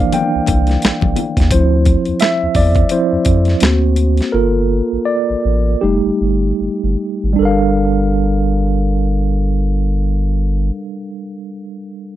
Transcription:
Already playing: E3 A#3 D4 A#4 C5 D5 F5
0.12 G5, closed hi-hat, muted conga, high conga, low conga
0.36 C2
0.46 C2, kick, closed hi-hat, high conga
0.67 snare, closed hi-hat, high conga
0.82 A#1, snare, closed hi-hat
1.01 A#1, kick, muted conga, high conga
1.16 closed hi-hat, low conga
1.37 D#2, kick, snare, closed hi-hat
1.51 D2 F3 C4 E4 C5, kick, closed hi-hat
1.85 kick, closed hi-hat
2.05 E2, closed hi-hat
2.20 E5, snare, closed hi-hat
2.43 E2
2.55 E2 D5, kick, open hi-hat
2.75 kick, closed hi-hat
2.89 F3 C4 E4 C5, closed hi-hat
3.13 F2
3.25 F2, kick, closed hi-hat
3.45 snare, closed hi-hat
3.60 D2 A#3 C4 F#4, snare, closed hi-hat
3.96 closed hi-hat
4.17 snare, closed hi-hat
4.32 G1 A#3 F4 A4 A#4
4.93 A1
5.05 D5
5.30 A1
5.45 A1
5.81 F1 G3 A3 D#4 G4
6.06 G1
6.21 G1
6.61 G1
6.84 G1
7.24 G#1
7.33 G3 D4
7.39 G1 A4 A#4
7.45 F5

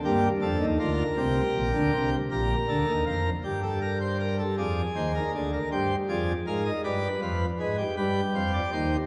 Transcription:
0.05 G2 G3 A#3 G4
0.42 F2 F3 D4 A4
0.61 D#2 D#3
0.79 D2 D3 F4 A#4
1.17 C2 C3 G4
1.55 A#1 A#2
1.74 D2 D3
1.93 C2 C3
2.31 A#1 A#2 G4 A#4
2.68 D2 D3 A4
2.87 D#2 D#3
3.06 F2 F3 A#4
3.44 G2 G3 G4
3.63 A4
3.82 A#4
4.01 C5
4.20 A#4
4.39 A4
4.58 F2 F3 G#4 D5
4.96 D#2 D#3 C5
5.15 A#4
5.35 D2 D3 G#4
5.53 A#4
5.72 G2 G3 G4 C5
6.09 F2 F3 G#4 D5
6.47 G#2 G#3 A#4 F5
6.65 D#5
6.84 G2 G3 B4 D5
7.22 F2 F3 B4
7.60 G#2 G#3 B4
7.78 G4
7.97 G2 G3 G4 B4
8.35 F2 F3 C5
8.53 D5
8.72 D#2 D#3 C5

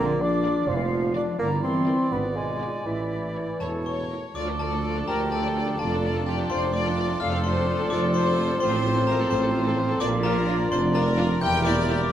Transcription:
Already playing: A#1 D3 A#3 F4 D5
0.21 F3 D4 D6
0.45 F4 A#4 D5
0.68 F1 A#2 F3 F5
0.75 E3
0.82 F3
1.15 F3 D4 F4 A#4 D5 D6
1.39 G1 D3 A#3 E4 D5 A#5
1.62 E3 C4 C6
1.87 E4 A#4 D5
2.11 G#1 D3 B3 F4 B5
2.36 B2 G#3 G#5
2.60 F4 B4 D5
2.85 A1 A2 E3 E4 E5
3.36 E4 A4 C#5
3.60 E1 A4 C#5 A5
3.85 A4 C#5 C#6
4.10 E4 A#4 C#5
4.34 D2 F3 A3 D4 F4 D5 D6
4.47 D4 A4
4.59 A3 F4 A4 D5 A5
4.72 D4 A4
4.83 A3 F4 D5
4.96 D4 A4
5.07 D2 A3 F4 G4 A#4 D5 A#5
5.20 D4 A4
5.31 A3 F4 A4 D5 A5
5.44 D4 A4
5.56 A3 F4 D5
5.68 D4 A4
5.79 F1 F2 A3 F4 A4 D5 A5
5.91 D4 A4
6.04 A3 F4 D5
6.16 D4 A4
6.26 A3 F4 G4 D5 G5
6.39 D4 A4
6.50 F1 F2 A3 F4 C5 D5 C6
6.62 D4 A4
6.73 A3 F4 D5 D6
6.85 D4 A4
6.97 A3 F4 D5
7.08 D4 A4
7.20 F1 F2 A3 C4 D4 F4 A4 C5 F5 F6
7.32 C4 A4
7.43 A3 F4 C5 C6
7.55 C4 A4
7.67 A3 F4 C5
7.78 C4 A4
7.90 F1 F2 A3 F4 C5 D5 D6
8.01 C4 A4
8.13 A3 F4 C5 C6
8.25 C4 A4
8.36 A3 F4 C5
8.47 C4 A4
8.59 A1 A2 F3 A3 C4 F4 C5 C6
8.71 C4 A4
8.83 A3 F4 C5
8.94 C4 A4
9.06 A3 F4 A#4 C5 A#5
9.18 C4 A4
9.30 A1 A2 A3 F4 C5 C6
9.41 C4 A4
9.52 A3 F4 C5
9.64 C4 A4
9.76 A3 F4 C5
9.88 C4 A4
10.00 A#1 A#2 A#3 D4 F4 D5 D6
10.23 D4 F4 A#4 A#5
10.48 D4 F4
10.71 F1 F2 D4 C5 C6
10.94 D4 F4 A#4 A#5
11.18 D4 F4
11.41 E1 E2 G3 A#3 E4 G4 A#4 G5 G6
11.65 A#3 E4 G4 D5 D6
11.89 A#3 E4 G4

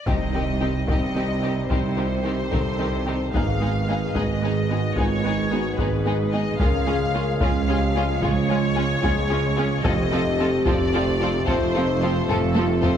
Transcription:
0.06 C2 C3 D#3 C4 D#4 G4 C5 D#5, taiko, impact
0.10 G3
0.34 D#3 C4 D#4 G4
0.61 D#3 C4 D#4 G4
0.87 C2 C3 D#3 C4 D#4 G4 D#5, taiko
1.15 D#3 C4 D#4 G4
1.42 D#3 C4 D#4 G4
1.69 C2 C3 D#3 C4 D#4 G4 C5, taiko
1.95 D#3 C4 D#4 F4 G4
2.22 D#3 C4 D#4 G4
2.50 C2 C3 D#3 C4 D#4 G4 A4, taiko
2.79 D#3 C4 D#4 G4
3.07 D#3 C4 D#4 G4
3.32 G#1 G#2 G#3 B3 D#4 G#4 B4 F5, taiko
3.60 G#3 B3 D#4 G#4
3.87 G#3 B3 D#4 G#4
4.14 G#1 G#2 G#3 B3 D#4 G#4 B4 D#5, taiko
4.42 G#3 B3 D#4 G#4
4.69 G#3 B3 D#4 F#4 G#4
4.96 G#1 G#2 G#3 B3 D#4 F4 G#4 C#5, taiko
5.23 G#3 B3 D#4 G#4
5.50 G#3 B3 D#4 F#4 G#4
5.77 G#1 G#2 G#3 B3 D#4 G#4 B4, taiko
6.05 G#3 B3 D#4 G#4
6.31 G#3 B3 D#4 G#4 D#5
6.59 C#2 F3 G#3 C#4 F4 G#4 A#4 C#5 F5, taiko
6.87 G#3 C#4 F4 G#4
7.14 G#3 C#4 F4 G#4 A#4
7.40 C#2 G#3 C#4 F4 G#4 F5, taiko
7.69 G#3 C#4 F4 G4 G#4
7.96 G#3 C#4 F4 G#4
8.20 C#2 G#3 C#4 F4 G#4 C#5, taiko
8.50 G#3 C#4 F4 G#4
8.75 G#3 C#4 F4 G#4
9.02 C#2 G#3 C#4 F4 G#4, taiko
9.29 G#3 C#4 F4 G#4
9.57 G#3 C#4 F4 G#4
9.83 F1 F2 C3 F3 A3 C4 F4 G4 A4 C5 D#5, taiko
10.12 F3 C4 F4 A4
10.40 F3 C4 F4 A4
10.66 F1 F2 F3 C4 F4 A4 D5, taiko
10.94 F3 C4 F4 A4
11.21 F3 C4 F4 A4
11.46 F1 F2 F3 C4 F4 A4 C5, taiko
11.74 F3 C4 D#4 F4 A4
12.02 F3 C4 F4 A4
12.29 F1 F2 F3 C4 F4 A4, taiko low-mid
12.55 F3 C4 F4 A4, taiko high
12.82 F3 C4 F4 A4 C5, taiko low

